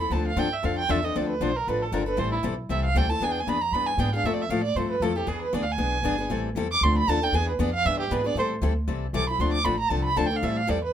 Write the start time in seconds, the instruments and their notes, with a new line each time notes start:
0.00 steel-string acoustic guitar C4 E4 A4, violin B5
0.10 upright bass D2, steel-string acoustic guitar D3 F3 C4 D4 A4, violin A5
0.27 violin F5
0.36 upright bass G2, steel-string acoustic guitar D3 F3 C4 D4 A4, violin G5
0.53 violin E5
0.63 upright bass F2, steel-string acoustic guitar D3 F3 C4 D4 A4, violin F5
0.79 violin G5
0.89 upright bass E2, steel-string acoustic guitar D3 F3 C4 D4 A4, violin E5
1.02 steel-string acoustic guitar C4 D4 A4, violin D#5
1.15 upright bass D2, steel-string acoustic guitar D3 F3 C4 D4 A4, violin D5
1.29 violin B4
1.40 upright bass B1, steel-string acoustic guitar D3 F3 C4 D4 A4, violin C5
1.56 violin A#4
1.67 upright bass A1, steel-string acoustic guitar D3 F3 C4 D4 A4, violin B4
1.82 violin A4
1.92 upright bass G1, steel-string acoustic guitar D3 F3 C4 D4 A4, violin A#4
2.06 steel-string acoustic guitar C4 D4 A4, violin B4
2.17 upright bass A1, steel-string acoustic guitar E3 G3 C4 E4 A4, violin C5
2.32 violin E4
2.43 upright bass B1, steel-string acoustic guitar E3 G3 C4 E4 A4
2.69 upright bass C2, steel-string acoustic guitar E3 G3 C4 E4 A4, violin E5
2.85 violin F5
2.95 upright bass D2, steel-string acoustic guitar E3 G3 C4 E4 A4, violin G5
3.09 steel-string acoustic guitar C4 E4 A4, violin A5
3.20 upright bass E2, steel-string acoustic guitar E3 B3 D4 G#4, violin G#5
3.31 violin G5
3.40 violin G#5
3.47 upright bass F2, steel-string acoustic guitar E3 B3 D4 G#4, violin B5
3.61 violin A#5
3.72 upright bass G2, steel-string acoustic guitar E3 B3 D4 G#4, violin B5
3.87 violin G#5
3.97 upright bass G#2, steel-string acoustic guitar E3 B3 D4 G#4, violin G5
4.14 steel-string acoustic guitar B3 D4 G#4, violin F5
4.23 upright bass F2, steel-string acoustic guitar F3 A3 C4 E4 A4, violin E5
4.34 violin D5
4.42 violin E5
4.49 upright bass A2, steel-string acoustic guitar F3 A3 C4 E4 A4, violin F5
4.64 violin D5
4.75 upright bass G2, steel-string acoustic guitar F3 A3 C4 E4 A4, violin C5
4.90 violin B4
5.00 upright bass F2, steel-string acoustic guitar F3 A3 C4 E4 A4, violin A4
5.15 steel-string acoustic guitar C4 E4 A4, violin G4
5.27 upright bass E2, steel-string acoustic guitar E3 B3 D4 G#4, violin G#4
5.42 violin B4
5.53 upright bass D2, steel-string acoustic guitar E3 B3 D4 G#4, violin D5
5.63 violin F5
5.72 violin G#5
5.78 upright bass B1, steel-string acoustic guitar E3 B3 D4 G#4
6.03 upright bass G1, steel-string acoustic guitar E3 B3 D4 G#4
6.18 steel-string acoustic guitar B3 D4 G#4
6.30 upright bass A1, steel-string acoustic guitar E3 G3 C4 E4 A4
6.55 upright bass E2, steel-string acoustic guitar E3 G3 C4 E4 A4
6.72 violin D6
6.81 upright bass D2, steel-string acoustic guitar D3 F3 C4 D4 A4, violin C6
6.98 violin B5
7.08 upright bass D#2, steel-string acoustic guitar D3 F3 C4 D4 A4, violin A5
7.22 steel-string acoustic guitar C4 D4 A4, violin G5
7.32 upright bass E2, steel-string acoustic guitar E3 B3 D4 G#4, violin G#5
7.49 violin B4
7.59 upright bass F2, steel-string acoustic guitar E3 B3 D4 G#4, violin D5
7.74 violin F5
7.85 upright bass G2, steel-string acoustic guitar E3 B3 D4 G#4, violin E5
8.00 violin G4
8.11 upright bass G#2, steel-string acoustic guitar E3 B3 D4 G#4, violin B4
8.24 steel-string acoustic guitar B3 D4 G#4, violin D5
8.35 upright bass A2, steel-string acoustic guitar E3 G3 C4 E4 A4, violin C5
8.61 upright bass D2, steel-string acoustic guitar E3 G3 C4 E4 A4
8.88 upright bass C2, steel-string acoustic guitar E3 G3 C4 E4 A4
9.13 upright bass B1, steel-string acoustic guitar E3 G3 C4 E4 A4, violin D6
9.29 steel-string acoustic guitar C4 E4, violin B5
9.39 upright bass D2, steel-string acoustic guitar D3 F3 C4 D4 A4, violin C6
9.53 violin D6
9.64 upright bass A1, steel-string acoustic guitar D3 F3 C4 D4 A4, violin B5
9.80 violin A#5
9.89 upright bass C2, steel-string acoustic guitar D3 F3 C4 D4 A4, violin A5
10.04 violin B5
10.16 upright bass D2, steel-string acoustic guitar D3 F3 C4 D4 A4, violin A5
10.26 violin G5
10.32 steel-string acoustic guitar C4 D4
10.37 violin F5
10.43 upright bass A2, steel-string acoustic guitar E3 G3 C4 E4 A4, violin E5
10.57 violin F5
10.67 upright bass E2, steel-string acoustic guitar E3 G3 C4 E4 A4, violin D5
10.84 violin B4